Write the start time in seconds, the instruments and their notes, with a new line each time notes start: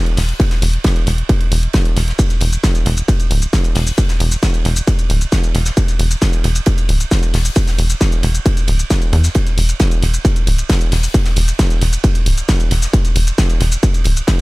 0.06 closed hi-hat, ride
0.17 analog synth bass E1, snare, open hi-hat
0.29 closed hi-hat
0.40 kick, closed hi-hat, ride
0.51 snare, closed hi-hat
0.62 analog synth bass E1, open hi-hat, ride
0.73 closed hi-hat
0.84 kick, snare, closed hi-hat, ride
0.96 closed hi-hat
1.07 analog synth bass E1, open hi-hat, ride
1.18 closed hi-hat
1.29 kick, closed hi-hat, ride
1.41 closed hi-hat
1.51 analog synth bass E1, open hi-hat, ride
1.63 closed hi-hat
1.73 kick, snare, closed hi-hat, ride
1.85 closed hi-hat, ride
1.96 analog synth bass E1, open hi-hat, ride
2.08 snare, closed hi-hat
2.19 kick, closed hi-hat, ride, shaker
2.30 closed hi-hat, shaker
2.41 analog synth bass E1, open hi-hat, ride
2.53 closed hi-hat, shaker
2.63 kick, snare, closed hi-hat, ride, shaker
2.74 closed hi-hat, ride, shaker
2.86 analog synth bass E1, open hi-hat, ride
2.97 closed hi-hat, shaker
3.08 kick, closed hi-hat, ride, shaker
3.20 closed hi-hat, shaker
3.31 analog synth bass D1, open hi-hat, ride
3.42 closed hi-hat, ride, shaker
3.53 kick, snare, closed hi-hat, ride, shaker
3.64 closed hi-hat, ride, shaker
3.75 analog synth bass E1, snare, open hi-hat
3.87 closed hi-hat, shaker
3.98 kick, closed hi-hat, ride, shaker
4.09 snare, closed hi-hat, shaker
4.20 analog synth bass E1, open hi-hat, ride
4.32 closed hi-hat, shaker
4.43 kick, snare, closed hi-hat, ride, shaker
4.54 closed hi-hat, shaker
4.65 analog synth bass E1, open hi-hat, ride
4.76 closed hi-hat, shaker
4.87 kick, closed hi-hat, ride, shaker
4.99 closed hi-hat, shaker
5.10 analog synth bass D1, open hi-hat, ride
5.21 closed hi-hat, shaker
5.32 kick, snare, closed hi-hat, ride, shaker
5.43 closed hi-hat, ride, shaker
5.55 analog synth bass E1, open hi-hat, ride
5.66 snare, closed hi-hat, shaker
5.77 kick, closed hi-hat, ride, shaker
5.88 closed hi-hat, shaker
5.99 analog synth bass E1, open hi-hat, ride
6.11 closed hi-hat, shaker
6.22 kick, snare, closed hi-hat, ride, shaker
6.33 closed hi-hat, ride, shaker
6.44 analog synth bass E1, open hi-hat, ride
6.55 closed hi-hat, shaker
6.66 kick, closed hi-hat, ride, shaker
6.78 closed hi-hat, shaker
6.89 analog synth bass D1, open hi-hat, ride
7.00 closed hi-hat, ride, shaker
7.11 kick, snare, closed hi-hat, ride, shaker
7.23 closed hi-hat, ride, shaker
7.34 analog synth bass E1, snare, open hi-hat
7.45 closed hi-hat, shaker
7.56 kick, closed hi-hat, ride, shaker
7.67 snare, closed hi-hat, shaker
7.79 analog synth bass E1, open hi-hat, ride
7.90 closed hi-hat, shaker
8.01 kick, snare, closed hi-hat, ride, shaker
8.12 closed hi-hat, shaker
8.23 analog synth bass E1, open hi-hat, ride
8.35 closed hi-hat, shaker
8.46 kick, closed hi-hat, ride, shaker
8.57 closed hi-hat, shaker
8.68 analog synth bass D1, open hi-hat, ride
8.79 closed hi-hat, shaker
8.90 kick, snare, closed hi-hat, ride, shaker
9.01 closed hi-hat, ride, shaker
9.13 analog synth bass E2, open hi-hat, ride
9.24 snare, closed hi-hat, shaker
9.35 kick, closed hi-hat, ride, shaker
9.47 closed hi-hat, shaker
9.58 analog synth bass E1, open hi-hat, ride
9.69 closed hi-hat, shaker
9.79 kick, snare, closed hi-hat, ride, shaker
9.91 closed hi-hat, ride, shaker
10.02 analog synth bass E1, open hi-hat, ride
10.14 closed hi-hat, shaker
10.25 kick, closed hi-hat, ride, shaker
10.36 closed hi-hat, shaker
10.47 analog synth bass D1, open hi-hat, ride
10.58 closed hi-hat, ride, shaker
10.70 kick, snare, closed hi-hat, ride, shaker
10.80 closed hi-hat, ride, shaker
10.91 analog synth bass E1, snare, open hi-hat
11.03 closed hi-hat, shaker
11.14 kick, closed hi-hat, ride, shaker
11.25 snare, closed hi-hat, shaker
11.36 analog synth bass E1, open hi-hat, ride
11.48 closed hi-hat, shaker
11.59 kick, snare, closed hi-hat, ride, shaker
11.70 closed hi-hat, shaker
11.81 analog synth bass E1, open hi-hat, ride
11.93 closed hi-hat, shaker
12.04 kick, closed hi-hat, ride, shaker
12.15 closed hi-hat, shaker
12.26 analog synth bass D1, open hi-hat, ride
12.38 closed hi-hat, shaker
12.49 kick, snare, closed hi-hat, ride, shaker
12.60 closed hi-hat, ride, shaker
12.71 analog synth bass E1, open hi-hat, ride
12.82 snare, closed hi-hat, shaker
12.93 kick, closed hi-hat, ride, shaker
13.05 closed hi-hat, shaker
13.15 analog synth bass E1, open hi-hat, ride
13.27 closed hi-hat, shaker
13.38 kick, snare, closed hi-hat, ride, shaker
13.50 closed hi-hat, ride, shaker
13.60 analog synth bass E1, open hi-hat, ride
13.72 closed hi-hat, shaker
13.83 kick, closed hi-hat, ride, shaker
13.94 closed hi-hat, shaker
14.04 analog synth bass D1, open hi-hat, ride
14.17 closed hi-hat, ride, shaker
14.27 kick, snare, closed hi-hat, ride, shaker